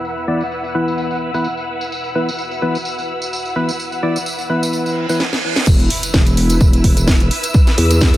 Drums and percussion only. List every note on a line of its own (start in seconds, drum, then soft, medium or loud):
0.05 tambourine medium
0.18 tambourine soft
0.41 tambourine medium
0.52 tambourine medium
0.64 tambourine soft
0.88 tambourine medium
0.98 tambourine medium
1.11 tambourine soft
1.34 tambourine medium
1.44 tambourine medium
1.57 tambourine soft
1.81 tambourine medium
1.92 tambourine medium
2.04 tambourine soft
2.29 tambourine medium
2.38 tambourine medium
2.51 tambourine soft
2.75 tambourine medium
2.85 tambourine medium
2.98 tambourine soft
3.22 tambourine medium
3.33 tambourine medium
3.45 tambourine soft
3.69 tambourine medium
3.80 tambourine medium
3.92 tambourine soft
4.16 tambourine medium
4.26 tambourine medium
4.39 tambourine soft
4.63 tambourine medium
4.73 tambourine medium
4.86 tambourine soft
5.09 tambourine medium
5.20 snare medium
5.33 snare medium
5.56 snare medium
5.67 kick loud
5.67 crash loud
5.67 tambourine medium
5.79 closed hi-hat soft
5.79 tambourine soft
5.90 open hi-hat loud
6.03 closed hi-hat medium
6.03 tambourine medium
6.14 kick loud
6.14 snare loud
6.14 tambourine medium
6.27 closed hi-hat medium
6.27 tambourine soft
6.37 open hi-hat loud
6.49 closed hi-hat medium
6.49 tambourine medium
6.61 kick loud
6.61 tambourine medium
6.73 closed hi-hat medium
6.73 tambourine soft
6.84 kick medium
6.84 open hi-hat loud
6.97 closed hi-hat medium
6.97 tambourine medium
7.08 kick loud
7.08 snare loud
7.08 tambourine medium
7.20 closed hi-hat soft
7.20 tambourine soft
7.31 open hi-hat loud
7.43 closed hi-hat medium
7.43 tambourine medium
7.54 kick loud
7.54 tambourine medium
7.67 snare soft
7.67 closed hi-hat soft
7.67 tambourine soft
7.78 open hi-hat loud
7.91 closed hi-hat medium
7.91 tambourine medium
8.01 kick loud
8.01 snare loud
8.01 tambourine medium
8.14 closed hi-hat medium
8.14 tambourine soft